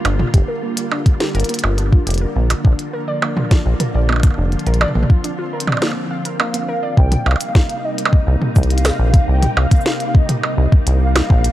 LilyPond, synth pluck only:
\new Staff \with { instrumentName = "Synth pluck" } { \time 4/4 \key c \minor \tempo 4 = 104 d'16 f'16 g'16 bes'16 bes16 r16 d'16 r16 g'16 bes'16 bes16 f'16 d'16 f'16 g'16 bes'16 | bes16 r16 d'16 r16 bes'16 d''16 bes16 f'16 d'16 f'16 bes'16 d''16 bes16 r16 d'16 r16 | bes'16 d''16 bes16 f'16 d'16 f'16 bes'16 d''16 bes16 r16 f''16 bes'16 bes16 bes16 bes'16 d''16 | r1 |
r1 | }